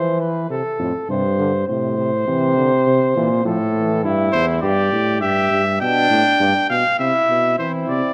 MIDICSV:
0, 0, Header, 1, 5, 480
1, 0, Start_track
1, 0, Key_signature, -1, "major"
1, 0, Tempo, 592300
1, 399, Time_signature, 3, 2, 24, 8
1, 6593, End_track
2, 0, Start_track
2, 0, Title_t, "Trumpet"
2, 0, Program_c, 0, 56
2, 3501, Note_on_c, 0, 72, 94
2, 3611, Note_off_c, 0, 72, 0
2, 3743, Note_on_c, 0, 74, 80
2, 4214, Note_off_c, 0, 74, 0
2, 4224, Note_on_c, 0, 76, 92
2, 4696, Note_off_c, 0, 76, 0
2, 4705, Note_on_c, 0, 79, 99
2, 5412, Note_off_c, 0, 79, 0
2, 5425, Note_on_c, 0, 77, 89
2, 5658, Note_off_c, 0, 77, 0
2, 5663, Note_on_c, 0, 76, 86
2, 6138, Note_off_c, 0, 76, 0
2, 6145, Note_on_c, 0, 72, 63
2, 6255, Note_off_c, 0, 72, 0
2, 6388, Note_on_c, 0, 74, 76
2, 6593, Note_off_c, 0, 74, 0
2, 6593, End_track
3, 0, Start_track
3, 0, Title_t, "Flugelhorn"
3, 0, Program_c, 1, 56
3, 0, Note_on_c, 1, 72, 74
3, 153, Note_off_c, 1, 72, 0
3, 165, Note_on_c, 1, 71, 59
3, 398, Note_off_c, 1, 71, 0
3, 409, Note_on_c, 1, 69, 74
3, 856, Note_off_c, 1, 69, 0
3, 895, Note_on_c, 1, 72, 67
3, 1359, Note_off_c, 1, 72, 0
3, 1364, Note_on_c, 1, 72, 74
3, 2772, Note_off_c, 1, 72, 0
3, 2806, Note_on_c, 1, 69, 79
3, 3269, Note_off_c, 1, 69, 0
3, 3276, Note_on_c, 1, 64, 90
3, 3742, Note_off_c, 1, 64, 0
3, 3752, Note_on_c, 1, 67, 83
3, 4219, Note_off_c, 1, 67, 0
3, 4232, Note_on_c, 1, 67, 85
3, 4564, Note_off_c, 1, 67, 0
3, 4702, Note_on_c, 1, 62, 96
3, 5424, Note_off_c, 1, 62, 0
3, 5665, Note_on_c, 1, 64, 74
3, 6117, Note_off_c, 1, 64, 0
3, 6144, Note_on_c, 1, 64, 69
3, 6593, Note_off_c, 1, 64, 0
3, 6593, End_track
4, 0, Start_track
4, 0, Title_t, "Trombone"
4, 0, Program_c, 2, 57
4, 0, Note_on_c, 2, 52, 81
4, 390, Note_off_c, 2, 52, 0
4, 403, Note_on_c, 2, 48, 65
4, 511, Note_off_c, 2, 48, 0
4, 644, Note_on_c, 2, 45, 51
4, 752, Note_off_c, 2, 45, 0
4, 890, Note_on_c, 2, 48, 63
4, 997, Note_off_c, 2, 48, 0
4, 1127, Note_on_c, 2, 50, 68
4, 1234, Note_off_c, 2, 50, 0
4, 1362, Note_on_c, 2, 48, 66
4, 1597, Note_off_c, 2, 48, 0
4, 1602, Note_on_c, 2, 48, 60
4, 1710, Note_off_c, 2, 48, 0
4, 1840, Note_on_c, 2, 52, 69
4, 2075, Note_off_c, 2, 52, 0
4, 2080, Note_on_c, 2, 50, 57
4, 2189, Note_off_c, 2, 50, 0
4, 2320, Note_on_c, 2, 48, 66
4, 2428, Note_off_c, 2, 48, 0
4, 2560, Note_on_c, 2, 52, 76
4, 2668, Note_off_c, 2, 52, 0
4, 2794, Note_on_c, 2, 53, 69
4, 2902, Note_off_c, 2, 53, 0
4, 3033, Note_on_c, 2, 52, 72
4, 3268, Note_off_c, 2, 52, 0
4, 6146, Note_on_c, 2, 60, 61
4, 6593, Note_off_c, 2, 60, 0
4, 6593, End_track
5, 0, Start_track
5, 0, Title_t, "Bass trombone"
5, 0, Program_c, 3, 57
5, 642, Note_on_c, 3, 41, 75
5, 750, Note_off_c, 3, 41, 0
5, 886, Note_on_c, 3, 43, 85
5, 1355, Note_off_c, 3, 43, 0
5, 1366, Note_on_c, 3, 45, 75
5, 1835, Note_off_c, 3, 45, 0
5, 1844, Note_on_c, 3, 48, 91
5, 2548, Note_off_c, 3, 48, 0
5, 2566, Note_on_c, 3, 46, 86
5, 2794, Note_off_c, 3, 46, 0
5, 2798, Note_on_c, 3, 45, 91
5, 3277, Note_on_c, 3, 43, 87
5, 3290, Note_off_c, 3, 45, 0
5, 3510, Note_off_c, 3, 43, 0
5, 3514, Note_on_c, 3, 40, 83
5, 3746, Note_off_c, 3, 40, 0
5, 3752, Note_on_c, 3, 43, 84
5, 3984, Note_off_c, 3, 43, 0
5, 3992, Note_on_c, 3, 45, 71
5, 4229, Note_on_c, 3, 43, 77
5, 4241, Note_off_c, 3, 45, 0
5, 4463, Note_off_c, 3, 43, 0
5, 4468, Note_on_c, 3, 43, 76
5, 4703, Note_off_c, 3, 43, 0
5, 4709, Note_on_c, 3, 47, 80
5, 4943, Note_off_c, 3, 47, 0
5, 4947, Note_on_c, 3, 45, 80
5, 5055, Note_off_c, 3, 45, 0
5, 5188, Note_on_c, 3, 43, 85
5, 5296, Note_off_c, 3, 43, 0
5, 5428, Note_on_c, 3, 47, 66
5, 5537, Note_off_c, 3, 47, 0
5, 5668, Note_on_c, 3, 48, 68
5, 5776, Note_off_c, 3, 48, 0
5, 5910, Note_on_c, 3, 47, 72
5, 6146, Note_off_c, 3, 47, 0
5, 6150, Note_on_c, 3, 52, 65
5, 6375, Note_off_c, 3, 52, 0
5, 6388, Note_on_c, 3, 48, 65
5, 6498, Note_off_c, 3, 48, 0
5, 6593, End_track
0, 0, End_of_file